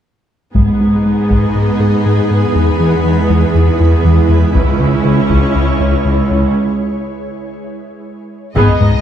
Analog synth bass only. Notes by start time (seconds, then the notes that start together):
0.55 G#2
0.81 G#3
1.06 G#3
1.30 G#2
1.56 G#2
1.80 G#2
2.06 G#2
2.31 G#2
2.55 E2
2.80 E3
3.06 E3
3.30 E2
3.55 E2
3.80 E2
4.05 E2
4.29 E2
4.55 C#2
4.80 C#3
5.05 C#3
5.30 C#2
5.56 C#2
5.80 C#2
6.06 C#2
6.31 C#2
8.56 G#2
8.80 G#2